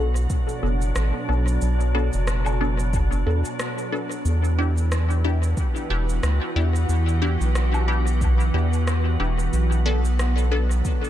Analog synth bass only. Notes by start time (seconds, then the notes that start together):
Already playing: B1
0.63 F#1
0.96 A1
1.29 B1
1.62 B1
2.14 F#1
3.27 E2
4.25 E2
5.90 E1
6.23 D2
6.56 E2
6.89 E2
7.41 B1
8.54 E2
9.20 E1
9.53 B1